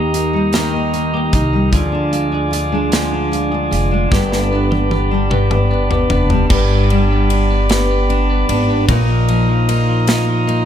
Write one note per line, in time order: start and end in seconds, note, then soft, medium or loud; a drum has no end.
0.00 1.29 D#2 medium
0.00 0.52 D#3 medium
0.00 0.13 A#3 medium
0.00 0.72 A#3 soft
0.00 0.13 D#4 medium
0.00 0.33 D#4 medium
0.00 0.53 G4 medium
0.00 1.71 G4 medium
0.00 1.71 D#5 medium
0.00 1.69 A#5 soft
0.00 1.71 D#6 medium
0.14 0.53 A#3 medium
0.14 0.92 D#4 medium
0.14 closed hi-hat medium
0.33 1.52 G3 medium
0.33 0.72 D#4 medium
0.53 1.72 D#3 medium
0.53 0.92 A#3 medium
0.53 1.12 G4 medium
0.53 snare medium
0.53 closed hi-hat medium
0.73 1.13 A#3 medium
0.73 1.52 D#4 medium
0.93 1.33 A#3 medium
0.93 1.31 D#4 medium
0.93 closed hi-hat soft
1.14 1.81 A#3 medium
1.14 1.73 G4 medium
1.32 1.71 C2 medium
1.32 1.81 A#3 medium
1.32 1.81 D#4 medium
1.32 kick medium
1.32 closed hi-hat medium
1.53 1.81 G3 soft
1.53 1.81 D#4 soft
1.72 3.68 D2 medium
1.72 2.92 D3 medium
1.72 2.91 F3 medium
1.72 4.09 F4 medium
1.72 2.31 G#4 medium
1.72 6.46 D5 medium
1.72 4.09 G#5 medium
1.72 6.46 D6 medium
1.72 kick medium
1.72 closed hi-hat medium
1.92 2.31 D4 medium
1.92 2.73 D4 medium
2.12 2.51 G#3 medium
2.12 2.50 F4 medium
2.12 closed hi-hat soft
2.32 3.11 D4 soft
2.32 2.91 G#4 medium
2.51 3.31 G#3 medium
2.51 3.30 F4 medium
2.51 closed hi-hat medium
2.72 3.90 G#3 medium
2.72 3.11 D4 medium
2.92 6.42 D3 medium
2.92 4.19 F3 medium
2.92 3.50 G#4 medium
2.92 snare medium
2.92 closed hi-hat medium
3.12 3.51 D4 medium
3.12 3.92 D4 medium
3.32 3.70 G#3 medium
3.32 3.70 F4 medium
3.32 closed hi-hat soft
3.52 4.32 D4 medium
3.52 4.11 G#4 medium
3.71 4.09 F1 medium
3.71 4.11 G#3 medium
3.71 4.19 F4 medium
3.71 closed hi-hat medium
3.91 4.19 G#3 medium
3.91 4.31 D4 medium
4.11 6.06 G1 medium
4.11 5.29 G2 medium
4.11 4.51 B3 medium
4.11 6.48 G4 medium
4.11 4.71 G4 medium
4.11 6.48 B5 medium
4.11 kick loud
4.11 snare soft
4.32 4.71 B3 medium
4.32 5.11 D4 medium
4.32 snare soft
4.51 4.91 B3 medium
4.51 4.91 D4 medium
4.71 5.51 B3 medium
4.71 5.31 G4 medium
4.71 high tom medium
4.91 5.30 B3 medium
4.91 5.70 D4 medium
4.91 high tom medium
5.11 6.31 G3 medium
5.11 5.50 D4 medium
5.31 6.50 G2 medium
5.31 5.70 B3 medium
5.31 5.91 G4 medium
5.31 mid tom medium
5.51 5.90 B3 medium
5.51 6.30 D4 medium
5.51 mid tom medium
5.70 6.11 B3 medium
5.70 6.11 D4 medium
5.91 7.70 B3 medium
5.91 6.51 G4 medium
5.91 floor tom medium
6.10 6.48 F1 medium
6.10 6.50 B3 medium
6.10 7.31 D4 medium
6.10 floor tom loud
6.30 6.91 G3 medium
6.30 6.90 D4 medium
6.30 floor tom medium
6.49 8.45 G1 loud
6.49 8.89 G2 medium
6.49 6.70 B3 medium
6.49 8.86 G4 medium
6.49 7.69 G4 medium
6.49 8.86 D5 medium
6.49 8.86 B5 medium
6.49 8.86 D6 medium
6.49 kick loud
6.49 crash medium
6.71 7.10 B3 medium
6.90 8.97 G3 medium
6.90 7.29 D4 medium
6.90 ride soft
7.11 7.49 B3 medium
7.30 8.09 D4 medium
7.30 8.08 D4 medium
7.30 ride medium
7.50 7.69 B3 medium
7.69 7.89 B3 medium
7.69 8.49 B3 medium
7.69 8.97 G4 medium
7.69 snare loud
7.69 ride medium
7.91 8.29 B3 medium
8.09 8.97 D4 medium
8.09 8.49 D4 medium
8.09 ride soft
8.30 8.69 B3 medium
8.49 8.86 G#1 medium
8.49 8.97 B3 medium
8.49 8.89 D4 medium
8.49 ride medium
8.70 8.97 B3 medium
8.89 10.65 A#1 loud
8.89 10.65 A#2 medium
8.89 9.08 F3 medium
8.89 10.08 D#4 medium
8.89 10.65 F4 medium
8.89 10.65 D#5 medium
8.89 10.65 A#5 medium
8.89 10.65 D#6 medium
8.89 kick loud
8.89 ride medium
9.09 9.48 F3 medium
9.29 10.65 F3 medium
9.29 9.67 A#3 medium
9.29 ride soft
9.49 9.88 F3 medium
9.68 10.46 A#3 medium
9.68 10.46 D#4 medium
9.68 ride medium
9.89 10.07 F3 medium
10.07 10.27 F3 medium
10.07 10.65 A#3 medium
10.07 10.65 D#4 medium
10.07 snare medium
10.07 ride medium
10.28 10.65 F3 medium
10.47 10.65 A#3 medium
10.47 10.65 D#4 medium
10.47 ride soft